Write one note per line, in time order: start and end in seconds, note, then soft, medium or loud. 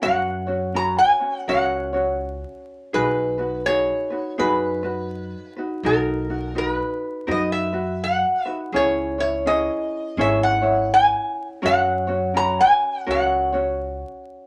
0.02 0.98 F#2 medium
0.02 0.47 C#4 medium
0.02 0.47 F#4 medium
0.02 0.48 A#4 medium
0.02 0.45 C#5 medium
0.02 0.78 F#5 medium
0.47 0.73 C#4 soft
0.47 0.74 F#4 soft
0.47 0.75 C#5 soft
0.74 1.20 C#4 medium
0.74 1.19 F#4 soft
0.74 1.20 A#4 soft
0.74 1.18 C#5 medium
0.74 0.97 A#5 medium
0.99 1.48 G#5 medium
1.20 1.47 C#4 soft
1.20 1.47 F#4 soft
1.20 1.48 C#5 soft
1.48 2.42 C#2 medium
1.48 1.94 C#4 medium
1.48 1.93 F#4 medium
1.48 1.93 A#4 medium
1.48 1.92 C#5 medium
1.48 2.62 F#5 medium
1.93 2.93 C#4 soft
1.93 2.94 F#4 soft
1.93 2.93 C#5 soft
2.93 3.88 B1 medium
2.93 3.39 D#4 medium
2.93 3.38 F#4 medium
2.93 3.38 G#4 medium
2.93 3.68 B4 medium
2.93 3.37 B4 medium
3.38 3.65 D#4 soft
3.38 3.66 F#4 soft
3.38 3.66 B4 medium
3.66 4.11 D#4 soft
3.66 4.10 F#4 medium
3.66 4.11 G#4 soft
3.66 4.09 B4 medium
3.66 4.39 C#5 medium
4.10 4.37 D#4 soft
4.10 4.38 F#4 soft
4.10 4.38 B4 soft
4.38 5.33 F#2 medium
4.38 4.83 D#4 medium
4.38 4.83 F#4 medium
4.38 4.83 G#4 medium
4.38 4.82 B4 medium
4.38 5.52 B4 medium
4.83 5.58 D#4 soft
4.83 5.58 F#4 soft
4.83 5.56 B4 medium
5.56 5.84 D#4 soft
5.56 5.84 F#4 soft
5.56 5.84 B4 soft
5.83 6.78 B1 medium
5.83 6.29 D#4 medium
5.83 6.29 F#4 medium
5.83 6.29 A#4 medium
5.83 6.58 A#4 medium
6.30 6.54 D#4 soft
6.30 6.54 F#4 soft
6.55 7.26 D#4 soft
6.55 7.27 F#4 medium
6.55 6.69 A#4 medium
6.55 7.27 B4 medium
6.69 7.31 B4 medium
7.27 8.22 F#2 medium
7.27 7.73 D#4 medium
7.27 7.72 F#4 medium
7.27 7.73 A#4 medium
7.27 7.71 B4 medium
7.31 7.51 D#5 medium
7.52 8.03 E5 medium
7.73 8.45 F#4 soft
7.73 8.44 B4 soft
8.04 8.46 F#5 medium
8.45 8.73 D#4 soft
8.45 8.74 F#4 soft
8.45 8.73 B4 soft
8.45 8.57 E5 medium
8.72 9.67 C#2 medium
8.72 9.18 C#4 medium
8.72 9.18 E4 medium
8.72 9.18 G#4 medium
8.72 9.17 C#5 medium
8.72 9.19 C#5 medium
9.18 9.45 C#4 soft
9.18 9.46 E4 soft
9.18 9.46 C#5 medium
9.18 9.48 C#5 medium
9.46 10.18 C#4 medium
9.46 10.18 E4 medium
9.46 10.16 G#4 soft
9.46 10.19 C#5 medium
9.46 10.20 D#5 medium
10.17 11.12 G#1 medium
10.17 10.63 C#4 medium
10.17 10.61 E4 medium
10.17 10.63 G#4 medium
10.17 10.60 C#5 medium
10.17 10.43 E5 medium
10.43 10.93 F#5 medium
10.62 11.62 C#4 soft
10.62 11.62 E4 soft
10.62 11.62 C#5 medium
10.94 11.47 G#5 medium
11.62 12.57 F#2 medium
11.62 12.08 C#4 medium
11.62 12.07 F#4 medium
11.62 12.07 A#4 medium
11.62 12.06 C#5 medium
11.62 12.39 F#5 loud
12.07 12.33 C#4 soft
12.07 12.34 F#4 soft
12.07 12.35 C#5 medium
12.34 13.05 C#4 medium
12.34 13.07 F#4 medium
12.34 13.05 A#4 medium
12.34 13.07 C#5 medium
12.34 12.59 A#5 loud
12.61 13.10 G#5 medium
13.06 14.02 C#2 medium
13.06 13.52 C#4 medium
13.06 13.52 F#4 medium
13.06 13.52 A#4 medium
13.06 13.51 C#5 medium
13.11 14.23 F#5 medium
13.53 14.47 C#4 soft
13.53 14.47 F#4 soft
13.53 14.47 C#5 soft